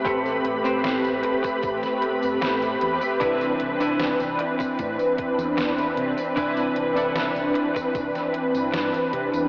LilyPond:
<<
  \new Staff \with { instrumentName = "Clean electric guitar" } { \time 4/4 \key a \minor \tempo 4 = 76 <c' g' a'>8 r16 <c' g' c''>16 r2. | <d' e' b'>8 r16 <d' e' b'>16 r2. | <d' e' b'>8 r16 <d' e' a'>16 r2. | }
  \new Staff \with { instrumentName = "Analog polysynth" } { \time 4/4 \key a \minor <a c' g' b''>2.~ <a c' g' b''>8 <a c' g' b'>8 | <e c' d' b'>2.~ <e c' d' b'>8 <e c' d' b'>8 | <e c' d' b'>2.~ <e c' d' b'>8 r8 | }
  \new Staff \with { instrumentName = "Fretless electric bass" } { \clef bass \time 4/4 \key a \minor a,,8 a,,16 a,,8 a,,16 r8 a,,16 r8 g,,16 a,,8 e,16 r16 | c,8 c,16 c,8 c,16 r8 a,16 r8 e,8. c16 r16 | c,8 c,16 c,8 c,16 r8 c,16 r8 g,,16 g,16 r16 c16 e,16 | }
  \new DrumStaff \with { instrumentName = "Drums" } \drummode { \time 4/4 <hh bd tamb>16 <hh tamb>16 hh16 <hh tamb>16 <hh sn tamb>16 <hh tamb>16 hh16 <hh bd tamb>16 <hh bd tamb>16 <hh sn tamb>16 hh16 <hh tamb>16 <hh sn tamb>16 <hh tamb>16 hh16 <hh tamb>16 | <hh bd tamb>16 <hh tamb>16 hh16 <hh tamb>16 <hh sn tamb>16 <hh tamb>16 hh16 <hh bd tamb>16 <hh bd tamb>16 <hh tamb>16 <hh bd>16 <hh tamb>16 <hh sn tamb>16 <hh tamb>16 hh16 <hh tamb>16 | <hh bd tamb>16 <hh tamb>16 hh16 <hh tamb>16 <hh sn tamb>16 <hh tamb>16 hh16 <hh bd tamb>16 <hh bd tamb>16 <hh sn tamb>16 hh16 <hh tamb>16 <hh sn tamb>16 <hh tamb>16 hh16 <hh tamb>16 | }
>>